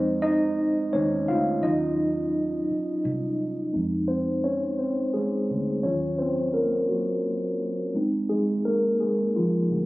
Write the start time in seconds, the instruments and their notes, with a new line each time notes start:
Already playing: fingered electric bass F2, tine electric piano G#3 C4 D#4 C5 D#5
0.22 tine electric piano D#4 D#5
0.93 fingered electric bass D#2, tine electric piano G#3 C#4 D#4 C5 C#5
1.28 fingered electric bass D2, tine electric piano F4 F5
1.62 fingered electric bass D#2, tine electric piano F#3 C#4 D#4 F4 D#5
2.70 muted fingered electric bass stroke
3.05 fingered electric bass C2
3.73 fingered electric bass F2, tine electric piano G#3 C4 D#4
4.08 tine electric piano C4 C5
4.44 tine electric piano C#4 C#5
4.79 tine electric piano C4 C5
5.14 fingered electric bass C2, tine electric piano G#3 G#4
5.51 fingered electric bass D2
5.83 fingered electric bass D#2, tine electric piano F#3 C#4 F4 C#5
6.18 tine electric piano C4 C5
6.54 tine electric piano A#3 A#4
6.89 tine electric piano F#3 F#4
7.94 fingered electric bass F2, tine electric piano G#3 C4 D#4
8.29 tine electric piano G#3 G#4
8.65 tine electric piano A#3 A#4
9.00 tine electric piano G#3 G#4
9.36 tine electric piano F3 F4
9.71 fingered electric bass D2